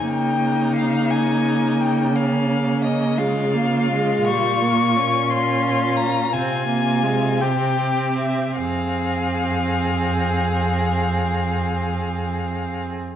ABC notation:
X:1
M:12/8
L:1/8
Q:3/8=55
K:Fm
V:1 name="Violin"
g2 f a2 g f2 e f3 | d'3 c'2 b a3 g2 =e | f8- f3 z |]
V:2 name="Violin"
E6 D3 F3- | F3 F3 F3 G3 | A8- A3 z |]
V:3 name="Viola"
B,8- B, A, B, A, | G, B, D4 C B, A, C3 | C8- C3 z |]
V:4 name="Cello" clef=bass
D,12 | B,,6 C,6 | F,,8- F,,3 z |]